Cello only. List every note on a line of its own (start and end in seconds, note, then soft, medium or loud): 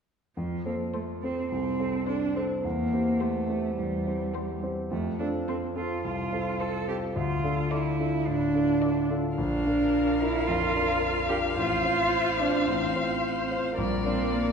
0.36 0.63 F3 soft
0.66 0.74 A#3 soft
0.94 1.02 A3 soft
1.22 1.50 C4 soft
1.51 2.07 C4 medium
2.08 2.35 D4 soft
2.36 2.44 C4 soft
2.64 3.23 A#3 medium
3.21 3.78 A3 medium
3.78 4.61 G3 soft
4.90 5.17 A3 soft
5.19 5.27 D4 medium
5.48 5.56 C4 soft
5.76 6.03 F4 medium
6.04 6.62 F4 medium
6.60 6.88 A4 medium
6.88 6.96 G4 medium
7.16 7.73 F4 medium
7.71 8.28 E4 medium
8.27 9.10 D4 medium
9.38 10.21 D4 medium
10.19 10.48 E4 medium
10.47 11.28 F4 medium
11.29 11.37 G4 medium
11.56 12.41 F4 medium
12.39 12.69 D4 medium
12.68 13.51 C4 medium
13.78 14.03 G3 medium
14.06 14.35 C4 medium
14.34 14.52 A#3 medium